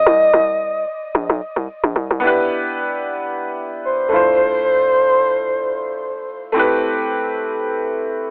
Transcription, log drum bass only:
0.06 0.32 C2 loud
0.33 0.85 C2 loud
1.15 1.29 A#1 loud
1.30 1.41 B1 loud
1.56 1.68 C2 medium
1.84 1.95 A#1 loud
1.96 2.10 C2 medium
2.11 2.22 C2 loud

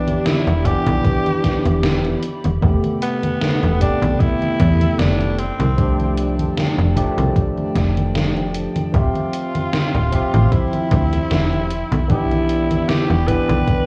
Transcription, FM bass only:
0.00 0.18 B1 loud
0.47 0.75 E1 medium
0.87 1.00 B1 medium
1.65 2.15 E1 medium
2.45 2.58 E1 medium
2.63 2.78 E1 loud
3.63 3.91 E1 medium
4.02 4.15 B1 medium
4.60 4.89 E2 loud
4.99 5.51 F1 medium
5.59 6.49 C2 loud
6.78 7.06 F1 medium
7.18 7.31 C2 medium
7.75 8.67 F1 medium
8.94 9.10 D1 loud
9.94 10.22 D1 medium
10.34 10.47 A1 medium
10.91 11.21 D2 loud
11.31 11.83 E1 medium
11.92 12.81 B1 loud
13.10 13.38 E1 medium
13.49 13.63 B1 medium

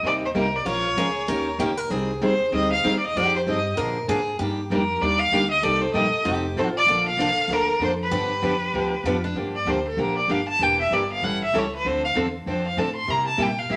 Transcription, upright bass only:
0.03 0.34 D#2 medium
0.35 0.65 C2 medium
0.66 0.96 A#1 medium
0.97 1.27 C#2 medium
1.28 1.58 D#2 medium
1.59 1.89 C#2 medium
1.90 2.21 C2 medium
2.21 2.51 D#2 medium
2.52 2.83 D2 medium
2.84 3.14 D#2 medium
3.15 3.45 F2 medium
3.46 3.76 G2 medium
3.78 4.07 A#2 medium
4.08 4.38 G#2 medium
4.39 4.69 G2 medium
4.70 5.00 F2 medium
5.01 5.31 D#2 medium
5.32 5.62 D2 medium
5.63 5.93 C2 medium
5.94 6.11 A#1 medium
6.13 muted upright bass stroke soft
6.25 6.55 F1 medium
6.56 6.86 A1 medium
6.86 7.17 A#1 medium
7.17 7.35 C2 medium
7.36 muted upright bass stroke soft
7.48 7.79 D2 medium
7.79 8.10 F2 medium
8.11 8.41 G2 medium
8.42 8.72 F2 medium
8.74 9.03 D2 medium
9.04 9.34 F2 medium
9.35 9.65 G2 medium
9.65 9.96 D2 medium
9.97 10.27 A#1 medium
10.28 10.59 G1 medium
10.59 10.90 E1 medium
10.91 11.21 G1 medium
11.22 11.52 A1 medium
11.53 11.83 C#2 medium
11.85 12.14 D2 medium
12.16 12.45 E2 medium
12.46 12.76 F2 medium
12.77 13.07 A2 medium
13.08 13.37 C3 medium
13.38 13.68 A#2 medium
13.70 13.77 A2 medium

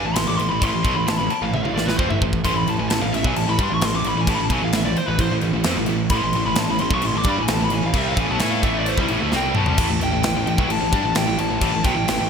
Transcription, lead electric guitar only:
0.06 0.15 A5 medium
0.15 0.27 C6 medium
0.27 0.37 D6 loud
0.37 0.48 C6 loud
0.48 0.63 B5 loud
0.63 0.95 C6 loud
0.95 1.07 B5 medium
1.07 1.18 A5 medium
1.17 1.29 B5 loud
1.30 1.41 A5 medium
1.42 1.53 F5 medium
1.53 1.63 E5 medium
1.63 1.74 F5 medium
1.74 1.86 D5 medium
1.86 1.97 B4 medium
1.97 2.09 C5 medium
2.10 2.17 E5 medium
2.45 2.56 C6 medium
2.56 2.67 B5 medium
2.70 2.80 A5 medium
2.80 2.89 G#5 medium
2.89 3.01 A5 loud
3.02 3.13 F5 medium
3.15 3.25 E5 medium
3.27 3.37 G#5 medium
3.37 3.49 A5 medium
3.49 3.59 B5 medium
3.63 3.72 C6 medium
3.74 3.83 C#6 loud
3.85 3.95 C6 loud
3.96 4.06 D6 loud
4.08 4.17 B5 loud
4.21 4.29 G#5 medium
4.30 4.36 A5 medium
4.35 4.44 B5 loud
4.44 4.51 A5 medium
4.52 4.62 G#5 loud
4.64 4.76 F5 medium
4.76 4.84 E5 medium
4.85 4.96 D5 medium
4.98 5.07 C5 medium
5.07 5.19 B4 medium
5.21 5.34 C5 medium
6.10 6.43 C6 medium
6.46 6.57 B5 medium
6.59 6.69 A5 loud
6.71 6.80 B5 medium
6.80 6.94 C6 loud
6.94 7.04 C#6 loud
7.07 7.16 C6 medium
7.18 7.27 D6 loud
7.30 7.42 B5 medium
7.42 7.54 G#5 medium
7.54 7.63 A5 loud
7.64 7.74 B5 loud
7.75 7.84 G#5 loud
7.86 7.98 F5 medium
7.98 8.07 E5 loud
8.09 8.19 F5 medium
8.20 8.30 G#5 loud
8.31 8.41 A5 loud
8.41 8.52 G#5 medium
8.51 8.63 F5 medium
8.65 8.75 E5 medium
8.79 8.88 D5 medium
8.88 8.99 C5 medium
9.01 9.07 E4 medium
9.36 9.57 G5 medium
9.56 9.98 A5 loud
10.03 10.45 G5 loud
10.49 10.71 G5 loud
10.71 11.17 A5 loud
11.17 11.39 G5 medium
11.40 11.82 A5 loud
11.85 12.28 G5 loud

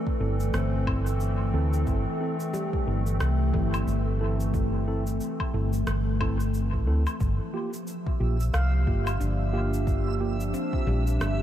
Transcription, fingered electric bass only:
0.20 0.50 G1 medium
0.54 1.51 G1 loud
1.54 1.84 D2 medium
1.87 2.04 G1 medium
2.87 3.17 G1 medium
3.21 3.51 C2 medium
3.54 3.84 G1 medium
3.87 5.18 G1 medium
5.54 5.84 G1 medium
5.87 6.87 G1 medium
6.87 7.04 D2 medium
7.21 7.38 G1 medium
8.21 8.50 A#1 medium
8.54 8.84 C2 medium
8.87 9.17 G1 medium
9.21 10.51 G1 medium
10.87 11.17 A#1 medium
11.20 11.43 G1 medium

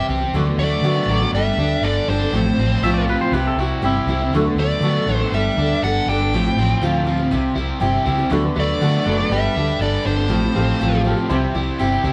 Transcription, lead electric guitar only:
0.59 1.30 D5 medium
1.35 1.86 E5 loud
1.83 2.09 D5 medium
2.10 3.05 C5 medium
4.59 5.15 D5 medium
5.15 5.36 C5 medium
5.34 5.83 E5 medium
5.84 6.09 F#5 medium
6.09 7.04 G5 medium
8.60 9.35 D5 medium
9.33 9.78 E5 medium
9.82 10.04 D5 medium
10.07 11.02 C5 medium

